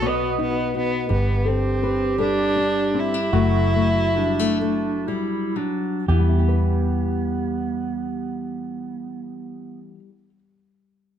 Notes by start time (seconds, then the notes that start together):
Already playing: B1 B2 F#4
0.02 B3 F#4 D#5
0.38 B3 D#4
0.75 B3 F#4
1.08 G1 G2 B3 G4 B4
1.45 C4 A4
1.83 B4
2.18 G3 D4 A4
2.56 D4
2.94 C4
2.99 E4
3.14 D4
3.33 F#1 F#3 A3 F#4
3.75 A3
4.16 G3 D4
4.39 A3
4.61 A3
5.07 G3 E4
5.56 F#3 D4
6.08 E2 E3 B3 G4
6.19 G3
6.28 E4
6.39 G4
6.48 B4